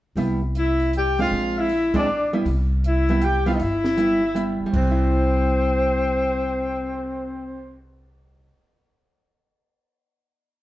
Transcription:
0.16 upright bass C2, hollow-body jazz guitar G3 B3 E4, open hi-hat
0.55 tenor saxophone E4, trumpet E5, closed hi-hat
0.80 open hi-hat
0.93 trumpet G5, closed hi-hat
0.97 tenor saxophone G4
1.18 hollow-body jazz guitar G#3 C4 D4, tenor saxophone F4, trumpet F5, open hi-hat
1.31 upright bass A#1, open hi-hat
1.58 tenor saxophone E4, trumpet E5
1.69 open hi-hat
1.94 hollow-body jazz guitar G#3 C4 D4, trumpet D5, kick, ride
1.98 tenor saxophone D4
2.33 hollow-body jazz guitar G3 B3 E4
2.45 upright bass C2, open hi-hat
2.84 tenor saxophone E4, trumpet E5, closed hi-hat
3.09 hollow-body jazz guitar G3 B3 E4, open hi-hat
3.22 tenor saxophone G4, trumpet G5, closed hi-hat
3.46 hollow-body jazz guitar G3 B3 E4, tenor saxophone F4, trumpet F5, open hi-hat
3.54 tenor saxophone D#4, trumpet D#5
3.59 upright bass G1, tenor saxophone E4, trumpet E5, open hi-hat
3.84 snare
3.97 hollow-body jazz guitar G3 B3 E4, closed hi-hat
4.35 hollow-body jazz guitar G3 B3 E4, closed hi-hat
4.60 muted upright bass stroke
4.66 hollow-body jazz guitar G3
4.72 upright bass C2, tenor saxophone C4, trumpet C5, kick, crash
4.91 hollow-body jazz guitar E4
4.98 cymbal swell

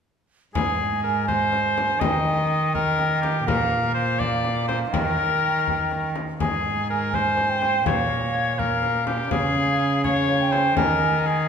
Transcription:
0.55 cello G#2, oboe G#4, recorder G#5, frame drum
1.03 oboe A#4
1.27 oboe C5, recorder G#5, frame drum
1.53 frame drum
1.78 frame drum
2.00 cello D#3, oboe D#5, recorder G5, frame drum
2.75 oboe A#4, recorder G5, frame drum
2.99 frame drum
3.22 oboe G4, frame drum
3.46 cello A#2, oboe A#4, recorder F5, frame drum
3.94 oboe C5
4.19 oboe D5, recorder F5, frame drum
4.45 frame drum
4.68 oboe C5, frame drum
4.92 cello D#3, oboe A#4, recorder G5, frame drum
5.68 frame drum
5.92 frame drum
6.16 frame drum
6.40 cello G#2, oboe G#4, recorder G#5, frame drum
6.90 oboe A#4
7.13 oboe C5, recorder G#5, frame drum
7.37 frame drum
7.49 recorder G5
7.62 frame drum
7.85 cello A#2, oboe C#5, recorder F5, frame drum
8.57 oboe A#4, recorder F5, frame drum
8.83 frame drum
9.07 oboe G4, frame drum
9.30 cello C#3, oboe G#4, recorder F5, frame drum
10.03 oboe C#5, recorder F5, frame drum
10.28 frame drum
10.40 recorder G5
10.52 oboe C5, frame drum
10.77 cello D#3, oboe A#4, recorder G#5, frame drum
11.26 oboe G#4

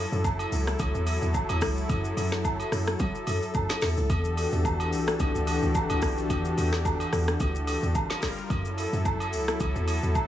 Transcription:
Already playing: analog synth pad F#3 E4 A4
0.12 log drum bass F#2, shaker
0.24 kick, low woodblock, shaker
0.39 high agogo, shaker
0.52 log drum bass C#2, open hi-hat, shaker
0.67 cross-stick, shaker
0.79 log drum bass C#2, kick, high agogo, shaker
0.95 log drum bass E2, shaker
1.07 open hi-hat, high agogo, shaker
1.22 log drum bass E2, shaker
1.34 kick, low woodblock, shaker
1.49 log drum bass E2, high agogo, shaker
1.61 log drum bass C#2, kick, cross-stick, open hi-hat, shaker
1.77 shaker
1.89 log drum bass F#2, kick, high agogo, shaker
2.04 shaker
2.17 log drum bass F#2, open hi-hat, high agogo, shaker
2.32 cross-stick, snare, shaker
2.45 kick, low woodblock, shaker
2.60 high agogo, shaker
2.72 log drum bass F#2, cross-stick, open hi-hat, shaker
2.87 cross-stick, shaker
2.99 log drum bass F#3, kick, high agogo, shaker
3.15 shaker
3.27 log drum bass F#2, open hi-hat, high agogo, shaker
3.42 shaker
3.54 log drum bass F#2, kick, low woodblock, shaker
3.69 snare, high agogo, shaker
3.82 log drum bass E2, cross-stick, snare, open hi-hat, shaker
3.97 log drum bass C#2, shaker
4.10 log drum bass E2, analog synth pad E3 D4 F#4 G4, kick, high agogo, shaker
4.25 shaker
4.37 open hi-hat, high agogo, shaker
4.52 log drum bass E2, shaker
4.65 kick, low woodblock, shaker
4.80 high agogo, shaker
4.92 log drum bass B1, open hi-hat, shaker
5.07 cross-stick, shaker
5.20 log drum bass B1, kick, high agogo, shaker
5.35 log drum bass D2, shaker
5.47 open hi-hat, high agogo, shaker
5.63 log drum bass D2, shaker
5.75 kick, low woodblock, shaker
5.90 log drum bass D2, high agogo, shaker
6.02 log drum bass B1, kick, cross-stick, open hi-hat, shaker
6.18 shaker
6.30 log drum bass E2, kick, high agogo, shaker
6.45 shaker
6.58 log drum bass E2, open hi-hat, high agogo, shaker
6.73 cross-stick, snare, shaker
6.85 kick, low woodblock, shaker
7.00 high agogo, shaker
7.13 log drum bass E2, cross-stick, open hi-hat, shaker
7.28 cross-stick, shaker
7.40 log drum bass D2, kick, high agogo, shaker
7.55 shaker
7.67 open hi-hat, high agogo, shaker
7.83 log drum bass E2, shaker
7.95 analog synth pad G3 F4 A#4, kick, low woodblock, shaker
8.10 snare, high agogo, shaker
8.22 kick, cross-stick, snare, open hi-hat, shaker
8.38 shaker
8.50 log drum bass F#2, analog synth pad F#3 E4 A4, kick, high agogo, shaker
8.65 shaker
8.78 open hi-hat, high agogo, shaker
8.93 log drum bass F#2, shaker
9.05 kick, low woodblock, shaker
9.20 high agogo, shaker
9.33 log drum bass C#2, open hi-hat, shaker
9.48 cross-stick, shaker
9.60 log drum bass C#2, kick, high agogo, shaker
9.75 log drum bass E2, shaker
9.88 open hi-hat, high agogo, shaker
10.03 log drum bass E2, shaker
10.15 kick, low woodblock, shaker

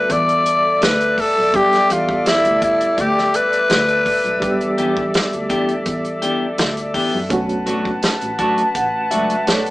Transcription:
Already playing: reed electric piano G3 B3 D4 F#4, horn section A4 D5 E5, tenor saxophone B4
0.10 double bass E2, tenor saxophone D5, kick, closed hi-hat
0.29 closed hi-hat
0.46 closed hi-hat
0.82 double bass D2, tenor saxophone B4, snare, closed hi-hat
1.00 closed hi-hat
1.18 tenor saxophone A4, kick, open hi-hat
1.37 double bass B1
1.53 reed electric piano G3 B3 D4 G4, tenor saxophone G4, kick, closed hi-hat
1.73 snare, closed hi-hat
1.90 double bass E2, tenor saxophone F4, closed hi-hat
2.09 kick
2.26 double bass E2, tenor saxophone E4, snare, closed hi-hat
2.45 double bass D2, closed hi-hat
2.62 tenor saxophone E4, kick, closed hi-hat
2.81 closed hi-hat
2.98 double bass D2, tenor saxophone G4, kick, closed hi-hat
3.18 snare
3.34 tenor saxophone B4, closed hi-hat
3.53 closed hi-hat
3.70 double bass D2, snare, closed hi-hat
3.88 closed hi-hat
4.06 kick, open hi-hat
4.25 double bass B1, closed hi-hat
4.40 reed electric piano G3 B3 D4 G4, kick, closed hi-hat
4.61 double bass E2, closed hi-hat
4.78 double bass E2, clean electric guitar E3 B3 D4 G4, closed hi-hat
4.97 kick
5.14 snare, closed hi-hat
5.33 double bass D2, closed hi-hat
5.49 clean electric guitar E3 B3 D4 G4, kick, closed hi-hat
5.69 closed hi-hat
5.86 double bass E2, kick, closed hi-hat
6.05 closed hi-hat
6.22 clean electric guitar E3 B3 D4 G4, closed hi-hat
6.58 double bass D2, snare, closed hi-hat
6.77 closed hi-hat
6.94 clean electric guitar E3 B3 D4 G4, kick, open hi-hat
7.13 double bass F#2
7.29 double bass B1, reed electric piano A3 C#4 D4 F#4, horn section B4 F#5 A5, kick, closed hi-hat
7.49 closed hi-hat
7.66 double bass B1, clean electric guitar F#3 A3 D4 F#4, closed hi-hat
7.85 kick
8.02 double bass B1, snare, closed hi-hat
8.21 double bass A1, closed hi-hat
8.39 clean electric guitar F#3 A3 D4 F#4, reed electric piano A5, kick, closed hi-hat
8.58 closed hi-hat
8.75 double bass A1, reed electric piano F#5, kick, closed hi-hat
9.11 double bass C#2, clean electric guitar F#3 A3 D4 F#4, reed electric piano E5, closed hi-hat
9.30 closed hi-hat
9.47 double bass B1, reed electric piano A3 D4 A4 C#5 D5, snare, closed hi-hat
9.66 closed hi-hat

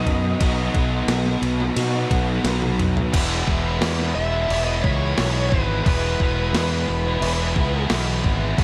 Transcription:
Already playing: overdriven electric guitar B2 F#3 B3 D#4 F#4, lead electric guitar D#5
0.06 fingered electric bass F#2, kick, ride
0.39 fingered electric bass B1, overdriven electric guitar B2 F#3 B3 D#4 F#4, kick, ride
0.74 fingered electric bass B1, overdriven electric guitar B3 D#4 F#4, kick, ride
1.07 fingered electric bass B1, overdriven electric guitar F#3 B3 D#4 F#4, snare, ride
1.26 snare
1.41 fingered electric bass B1, overdriven electric guitar B3 D#4 F#4, ride
1.60 snare
1.76 fingered electric bass B2, overdriven electric guitar B2 F#3 B3 D#4 F#4, ride
2.10 fingered electric bass B1, overdriven electric guitar B3 D#4 F#4, kick, ride
2.44 fingered electric bass B1, overdriven electric guitar F#3 B3 D#4 F#4, snare, ride
2.62 high tom
2.79 mid tom, ride
2.97 floor tom
3.12 fingered electric bass E1, overdriven electric guitar E2 B2 E3 G#3 B3 E4, kick, crash
3.47 fingered electric bass E1, overdriven electric guitar E3 G#3 B3 E4, kick
3.64 overdriven electric guitar E3 G#3 B3 E4
3.80 overdriven electric guitar E2 B2 E3 G#3 B3 E4, fingered electric bass E2, snare, crash
3.98 overdriven electric guitar E3 G#3 B3 E4, snare
4.15 fingered electric bass E1, lead electric guitar E5, muted overdriven electric guitar stroke
4.31 overdriven electric guitar E3 G#3 B3 E4
4.48 fingered electric bass E1, distorted electric guitar E3 G#3 B3 E4, crash
4.65 overdriven electric guitar E3 G#3 B3 E4, lead electric guitar D#5
4.82 fingered electric bass C#2, overdriven electric guitar E3 G#3 B3 E4, lead electric guitar C#5, kick
5.16 fingered electric bass B1, overdriven electric guitar E2 B2 E3 G#3 B3 E4, snare, crash
5.33 overdriven electric guitar E3 G#3 B3 E4
5.49 fingered electric bass G#1, overdriven electric guitar E3 G#3, lead electric guitar B4, kick
5.53 overdriven electric guitar B3 E4
5.83 fingered electric bass E1, overdriven electric guitar E2 B2 E3 G#3, lead electric guitar B4, kick, crash
5.87 overdriven electric guitar B3 E4
6.20 fingered electric bass E1, overdriven electric guitar E3 G#3 B3 E4, kick
6.36 overdriven electric guitar E3 G#3 B3 E4
6.53 fingered electric bass E2, overdriven electric guitar E2 B2 E3 G#3 B3 E4, snare, crash
6.70 overdriven electric guitar E3 G#3 B3 E4
6.88 fingered electric bass E1, muted overdriven electric guitar stroke
7.06 overdriven electric guitar E3 G#3 B3 E4
7.21 fingered electric bass E1, distorted electric guitar E3 G#3 B3 E4, crash
7.39 overdriven electric guitar E3 G#3 B3 E4
7.56 fingered electric bass C#2, overdriven electric guitar E3 G#3 B3 E4, kick
7.89 fingered electric bass B1, overdriven electric guitar E2 B2 E3 G#3 B3 E4, snare, crash
8.06 overdriven electric guitar E3 G#3 B3 E4
8.23 fingered electric bass G#1, overdriven electric guitar E3 G#3 B3 E4, kick
8.57 fingered electric bass F#1, overdriven electric guitar F#2 C#3 F#3 B3 C#4 F#4, kick, crash

